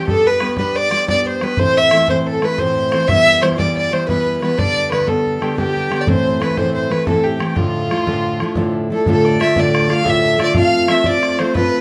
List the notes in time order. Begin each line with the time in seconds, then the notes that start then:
0.07 G3 B3 D4 G4 A4, bodhran
0.25 B4, bodhran
0.40 G3 B3 D4 G4, bodhran
0.49 bodhran
0.57 G3 B3 D4 G4 B4, bodhran
0.74 D5, bodhran
0.91 G3 B3 D4 G4, bodhran
1.08 G3 B3 D4 G4 D5, bodhran
1.25 C5, bodhran
1.41 G3 B3 D4 G4 B4, bodhran
1.57 A2 E3 A3 C4 E4 C5, bodhran
1.75 E5, bodhran
1.91 E3 A3 C4 E4, bodhran
2.00 bodhran
2.08 A2 E3 A3 C4 E4 C5, bodhran
2.27 A4, bodhran
2.41 E3 A3 C4 E4 B4, bodhran
2.58 A2 E3 A3 C4 E4 C5, bodhran
2.76 bodhran
2.92 E3 A3 C4 E4, bodhran
3.08 E3 G3 B3 E4 E5, bodhran
3.27 bodhran
3.42 E3 G3 B3 E4 C5, bodhran
3.52 bodhran
3.57 E3 G3 B3 E4 D5, bodhran
3.75 D5, bodhran
3.92 E3 G3 B3 E4 C5, bodhran
4.08 E3 G3 B3 E4 B4, bodhran
4.26 bodhran
4.41 E3 G3 B3 E4 B4, bodhran
4.57 D3 G3 B3 D4 D5, bodhran
4.77 bodhran
4.91 D3 G3 B3 D4 B4, bodhran
5.00 bodhran
5.06 D3 G3 B3 D4 A4, bodhran
5.27 bodhran
5.37 D3 G3 A4
5.41 B3 D4 G4, bodhran
5.56 D3 G3 B3 D4 G4, bodhran
5.76 bodhran
5.90 D3 G3 B3 D4, bodhran
6.01 D5
6.06 A2 E3 A3 C4 E4 C5, bodhran
6.26 bodhran
6.40 E3 A3 C4 E4 B4, bodhran
6.50 bodhran
6.57 A2 E3 A3 C4 E4 C5, bodhran
6.75 C5, bodhran
6.89 E3 A3 C4 E4 B4, bodhran
7.07 A2 E3 A3 C4 E4 A4, bodhran
7.23 G4, bodhran
7.39 E3 A3 C4 E4, bodhran
7.55 D2 A2 F3 A3 D4 F4, bodhran
7.59 F4
7.75 bodhran
7.90 F3 A3 D4 E4, bodhran
7.99 bodhran
8.07 D2 A2 F3 A3 D4, bodhran
8.25 bodhran
8.40 F3 A3 D4 E4, bodhran
8.55 D2 A2 F3 A3 D4 E4, bodhran
8.73 bodhran
8.90 F3 A3 D4 E4 A4
8.94 A4
9.06 D2 A2 D3 A3 D4 F4 A4, bodhran
9.11 A4
9.25 D5
9.39 D3 A3 D4 F4 E5, bodhran
9.56 D2 A2 D3 A3 D4 F4 D5, bodhran
9.75 bodhran
9.89 D3 A3 D4 F4 F5, bodhran
9.94 F5
10.04 D2 A2 D3 A3 D4 F4 E5, bodhran
10.10 E5
10.15 bodhran
10.38 D3 A3 D4 F4 D5, bodhran
10.44 D5
10.54 F3 A3 C4 F4 F5, bodhran
10.59 F5
10.88 F3 A3 C4 F4 E5, bodhran
11.04 F3 A3 C4 F4 D5, bodhran
11.23 bodhran
11.39 F3 A3 C4 F4 C5, bodhran
11.54 F3 A3 C4 F4 B4, bodhran
11.63 bodhran